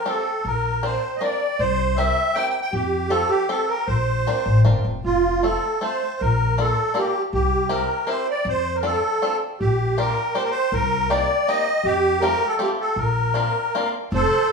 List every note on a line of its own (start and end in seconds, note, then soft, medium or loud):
0.05 0.26 C4 medium
0.05 0.26 F4 soft
0.05 0.26 G4 soft
0.05 0.26 A4 medium
0.05 0.47 A4 medium
0.44 0.95 A#1 medium
0.44 0.85 A#4 medium
0.83 1.03 C4 soft
0.83 1.03 D4 soft
0.83 1.03 F4 soft
0.83 1.03 A#4 medium
0.83 1.16 C5 medium
1.16 1.23 D#5 medium
1.21 1.41 C4 soft
1.21 1.41 D4 soft
1.21 1.41 F4 soft
1.21 1.41 A#4 medium
1.21 1.61 D5 medium
1.59 2.08 C2 medium
1.59 1.98 C5 medium
1.96 2.17 C4 medium
1.96 2.17 E4 medium
1.96 2.17 G4 medium
1.96 2.17 A#4 medium
1.96 2.36 E5 medium
2.35 2.54 C4 medium
2.35 2.55 E4 medium
2.35 2.54 G4 soft
2.35 2.55 A#4 medium
2.35 2.48 G5 loud
2.49 2.60 G5 medium
2.61 2.74 G5 medium
2.73 3.23 F2 medium
2.73 3.12 G4 medium
3.10 3.30 C4 medium
3.10 3.30 F4 medium
3.10 3.30 G4 medium
3.10 3.30 A4 medium
3.29 3.49 G4 medium
3.49 3.69 C4 medium
3.49 3.69 F4 medium
3.49 3.69 G4 soft
3.49 3.69 A4 medium
3.68 3.88 A#4 medium
3.87 4.25 A#1 medium
3.87 4.61 C5 medium
4.27 4.46 C4 soft
4.27 4.46 D4 medium
4.27 4.46 F4 soft
4.27 4.46 A#4 medium
4.46 4.63 A1 medium
4.65 4.83 G1 medium
4.65 4.84 C4 medium
4.65 4.85 D4 medium
4.65 4.84 F4 medium
4.65 4.85 A#4 medium
4.84 5.02 F1 medium
5.04 5.55 F1 medium
5.04 5.45 F4 medium
5.43 5.63 A3 soft
5.43 5.63 C4 medium
5.43 5.63 F4 soft
5.43 5.83 A4 medium
5.43 5.63 A4 medium
5.81 6.01 A3 medium
5.81 6.01 C4 medium
5.81 6.01 F4 soft
5.81 6.01 A4 medium
5.81 6.21 C5 medium
6.20 6.70 A#1 medium
6.20 6.59 A#4 medium
6.58 6.77 A#3 medium
6.58 6.77 D4 medium
6.58 6.77 F4 medium
6.58 6.98 A4 medium
6.58 6.77 A#4 medium
6.94 7.14 A#3 medium
6.94 7.14 D4 medium
6.94 7.14 F4 medium
6.94 7.22 G4 medium
6.94 7.14 A#4 medium
7.33 7.82 C2 medium
7.33 7.72 G4 medium
7.69 7.89 C4 medium
7.69 7.89 E4 soft
7.69 7.89 G4 medium
7.69 7.89 A#4 medium
7.69 8.10 A#4 medium
8.07 8.26 C4 medium
8.07 8.27 E4 medium
8.07 8.27 G4 soft
8.07 8.26 A#4 medium
8.07 8.28 C5 medium
8.30 8.48 D5 medium
8.45 8.95 F2 medium
8.45 8.76 C5 medium
8.76 8.85 A#4 medium
8.83 9.02 C4 medium
8.83 9.03 D4 medium
8.83 9.03 F4 soft
8.83 9.02 A4 medium
8.83 9.37 A4 medium
9.22 9.41 C4 soft
9.22 9.41 D4 soft
9.22 9.41 F4 soft
9.22 9.41 A4 medium
9.60 10.10 A#1 medium
9.60 9.99 G4 medium
9.98 10.17 A#3 medium
9.98 10.17 D4 medium
9.98 10.17 F4 medium
9.98 10.17 G4 medium
9.98 10.37 A#4 medium
10.35 10.54 A#3 medium
10.35 10.54 D4 soft
10.35 10.54 F4 soft
10.35 10.54 G4 medium
10.35 10.43 C5 medium
10.43 10.50 A#4 medium
10.50 10.74 C5 medium
10.72 11.21 C2 medium
10.72 11.12 A#4 medium
11.10 11.29 A#3 medium
11.10 11.30 C4 medium
11.10 11.30 D#4 medium
11.10 11.29 G4 medium
11.10 11.49 D5 medium
11.47 11.67 A#3 medium
11.47 11.67 C4 medium
11.47 11.67 D#4 soft
11.47 11.67 G4 medium
11.47 11.86 D#5 loud
11.83 12.33 F2 medium
11.83 12.24 G4 loud
12.21 12.42 A3 medium
12.21 12.41 C4 medium
12.21 12.42 F4 medium
12.21 12.42 G4 medium
12.21 12.48 A#4 loud
12.47 12.61 A4 medium
12.59 12.79 A3 medium
12.59 12.79 C4 soft
12.59 12.79 F4 medium
12.59 12.79 G4 medium
12.59 12.70 G4 medium
12.81 12.99 A4 medium
12.96 13.46 A#1 medium
12.96 13.90 A#4 medium
13.34 13.54 A#3 medium
13.34 13.54 C4 soft
13.34 13.55 D4 medium
13.34 13.54 F4 medium
13.75 13.94 A#3 medium
13.75 13.94 C4 medium
13.75 13.94 D4 medium
13.75 13.94 F4 medium
14.12 14.25 F1 medium
14.12 14.49 A4 medium
14.12 14.50 C5 medium